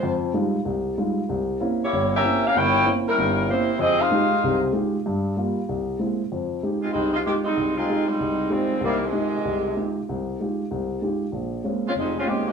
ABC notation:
X:1
M:4/4
L:1/8
Q:"Swing" 1/4=191
K:Fm
V:1 name="Saxophone section"
[A,Fc] z6 z | z3 [B,=EGd]2 [DGB=e]2 [DGBf] | [=EBdg]2 z [G,DEB]3 [B,EGc]2 | [CGAe] [EAcf]4 z3 |
z8 | z3 [A,CEF] [G,A,CE] [A,CEF] [E,A,CG] [G,A,CE]- | [G,A,CE] [A,CEF]2 [G,A,CE]3 [E,G,A,C]2 | [C,E,G,B,] [C,E,A,]6 z |
z8 | z3 [A,CDF] [F,A,CE] [A,CDF] [E,A,CG] [A,E] |]
V:2 name="Grand piano"
F,,2 [G,A,EF] z C,,2 [G,A,EF] z | C,,2 [B,CD=E] z G,,,2 [B,CDE] z | G,,,2 [B,CD=E] z [G,,,G,,]2 [B,CDE] z | F,,2 [A,EFG] z [C,,C,]2 [A,EFG] z |
G,,2 [G,B,F] z C,,2 [^G,B,C=E] z | F,,2 [A,EFG] z C,,2 [A,EFG] z | C,,2 [A,EFG] z C,,2 [A,EFG] z | C,,2 [A,EFG] z C,,2 [A,EFG] z |
C,,2 [A,EFG] z C,,2 [A,EFG] z | B,,,2 [A,B,CD] z F,,,2 [A,B,CD] z |]